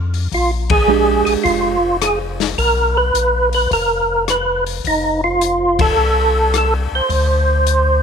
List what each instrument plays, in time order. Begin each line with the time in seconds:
Already playing: tonewheel organ F2
0.14 open hi-hat
0.31 tonewheel organ A#1 F4, kick, open hi-hat
0.70 tonewheel organ G#4, kick, ride
0.88 hollow-body jazz guitar G#3 D4 G4
1.25 tonewheel organ A#1 G#4, open hi-hat
1.44 tonewheel organ F1 F4, kick, open hi-hat
2.02 tonewheel organ G#4, cross-stick, closed hi-hat
2.40 snare, open hi-hat
2.58 tonewheel organ B1 A#4, kick, open hi-hat
2.97 tonewheel organ B4
3.14 tonewheel organ A#1, closed hi-hat
3.53 tonewheel organ B4, open hi-hat
3.71 tonewheel organ F1 A#4, kick, open hi-hat
4.28 tonewheel organ B4, cross-stick, closed hi-hat
4.66 open hi-hat
4.84 tonewheel organ F1 D#4, kick, open hi-hat
5.24 tonewheel organ F4
5.41 closed hi-hat
5.79 tonewheel organ A4, kick, ride
5.97 tonewheel organ C2
6.54 tonewheel organ A4, cross-stick, closed hi-hat
6.92 tonewheel organ C2 C5
7.09 tonewheel organ D2, kick, open hi-hat
7.67 closed hi-hat